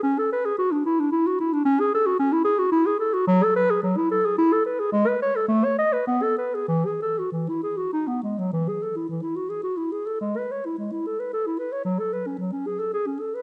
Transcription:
\new Staff \with { instrumentName = "Clarinet" } { \time 3/4 \key a \major \tempo 4 = 109 cis'16 a'16 b'16 gis'16 fis'16 d'16 e'16 d'16 e'16 fis'16 e'16 d'16 | \key e \major cis'16 gis'16 a'16 fis'16 cis'16 e'16 gis'16 fis'16 e'16 gis'16 a'16 fis'16 | fis16 a'16 b'16 gis'16 fis16 e'16 a'16 gis'16 e'16 a'16 b'16 gis'16 | gis16 b'16 cis''16 a'16 a16 cis''16 dis''16 b'16 b16 a'16 b'16 gis'16 |
e16 gis'16 a'16 fis'16 e16 e'16 gis'16 fis'16 dis'16 b16 gis16 fis16 | e16 gis'16 a'16 e'16 e16 e'16 fis'16 gis'16 fis'16 e'16 gis'16 a'16 | gis16 b'16 cis''16 e'16 gis16 e'16 a'16 b'16 a'16 e'16 b'16 cis''16 | fis16 a'16 b'16 cis'16 fis16 cis'16 gis'16 a'16 gis'16 cis'16 a'16 b'16 | }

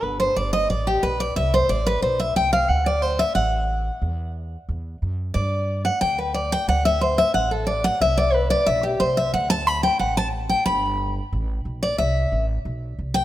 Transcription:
<<
  \new Staff \with { instrumentName = "Steel-string acoustic guitar" } { \time 4/4 \key g \major \tempo 4 = 181 b'8 c''8 d''8 ees''8 d''8 g'8 b'8 d''8 | e''8 c''8 d''8 b'8 c''8 e''8 g''8 f''8 | fis''8 d''8 c''8 e''8 fis''2~ | fis''4 r2. |
d''4. fis''8 g''8 b'8 d''8 g''8 | fis''8 e''8 c''8 e''8 fis''8 a'8 d''8 fis''8 | e''8 d''8 b'8 d''8 e''8 g'8 c''8 e''8 | fis''8 a''8 b''8 g''8 fis''8 a''8 r8 g''8 |
b''4. r2 d''8 | e''4. r2 g''8 | }
  \new Staff \with { instrumentName = "Upright bass" } { \clef bass \time 4/4 \key g \major g,,4 g,,4 a,,4 b,,4 | c,4 a,,4 b,,4 c,4 | d,2 a,,2 | e,2 e,4 fis,4 |
g,2 d,2 | d,2 a,,2 | c,2 b,,4 c,4 | d,2 a,,2 |
g,,2 a,,4 b,,4 | c,4 a,,4 b,,4 c,4 | }
>>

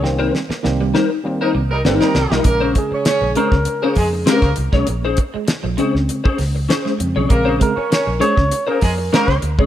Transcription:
<<
  \new Staff \with { instrumentName = "Clean electric guitar" } { \time 4/4 \key bes \dorian \tempo 4 = 99 r16 <ees' bes' c''>16 r4 <ees' bes' c''>16 r8 <ees' bes' c''>16 r8 <ees' bes' c''>16 r8 <ees' bes' ees''>16 | r16 <des' aes' c''>16 r4 <des' aes' c''>16 r8 <des' aes' c''>16 r8 <des' aes' c''>16 r8 <des' aes' des''>16 | r16 <des' aes' c''>16 r4 <des' aes' c''>16 r8 <des' aes' c''>16 r8 <des' aes' c''>16 r8 <des' aes' des''>16 | r16 <des' aes' c''>16 r4 <des' aes' c''>16 r8 <des' aes' c''>16 r8 <des' aes' c''>16 r8 <des' aes' des''>16 | }
  \new Staff \with { instrumentName = "Horn section" } { \time 4/4 \key bes \dorian r2 r16 <g ees' bes'>16 r16 <g ees' bes'>16 r16 <g ees' bes'>8. | <bes bes'>8 r16 <des' des''>16 <des' des''>8 r8. <bes bes'>16 <aes aes'>16 r16 <bes bes'>8 r8 | r1 | <bes bes'>8 r16 <des' des''>16 <des' des''>8 r8. <bes bes'>16 <aes aes'>16 r16 <bes bes'>8 r8 | }
  \new Staff \with { instrumentName = "Tine electric piano" } { \time 4/4 \key bes \dorian des'16 r2. r8. | r8 aes'4 bes'8. aes'4 r8. | r1 | r8 bes'4 des''8. bes'4 r8. | }
  \new Staff \with { instrumentName = "Tine electric piano" } { \clef bass \time 4/4 \key bes \dorian <ees g bes c'>8 r8 <ees g bes c'>8 r8 <ees g bes c'>8 r8 <ees g bes c'>8 r8 | <des aes des'>1 | r4. <des aes c'>8 r4. <des aes c'>8 | <des aes c'>8 r2. r8 | }
  \new Staff \with { instrumentName = "Clean electric guitar" } { \clef bass \time 4/4 \key bes \dorian c'16 r8 bes16 r16 g16 g16 r8. bes16 r8 g16 r16 g16 | bes16 r16 aes16 r8. aes16 bes16 r8 bes16 r16 aes16 r8 aes16 | bes16 r8 aes16 r16 f16 aes16 r8. bes16 r8 aes16 r16 f16 | bes16 r16 aes16 r8. aes16 bes16 r8 bes16 r16 aes16 r8 aes16 | }
  \new Staff \with { instrumentName = "Fingered electric bass" } { \clef bass \time 4/4 \key bes \dorian c,8 r8 c,8 r4 c,8 g,,16 r16 c,16 ces,16 | bes,,8 r8. bes,,16 r16 des,16 r8 f,8 r16 des,16 c,16 ces,16 | bes,,8 r8. bes,,16 r16 des,16 r8 des,8 r8 f,16 ces,16 | bes,,8 r8. bes,,16 r16 des,16 r8 f,8 r16 des,16 d,16 des,16 | }
  \new DrumStaff \with { instrumentName = "Drums" } \drummode { \time 4/4 sn8 sn16 sn16 sn8 sn8 r4 sn16 sn16 sn16 sn16 | <hh bd>8 <hh bd>8 <hh sn>8 hh16 <bd sn>16 hh8 <hho bd sn>8 <hh sn>16 <bd sn>16 hh16 <bd sn>16 | hh8 <hh bd>8 <hh sn>8 hh16 sn16 hh16 bd16 <hho sn>8 <hh sn>16 sn16 hh8 | <hh bd>8 <hh bd>8 <hh sn>8 hh16 <bd sn>16 hh8 <hho bd sn>8 <hh sn>16 <bd sn>16 hh16 bd16 | }
>>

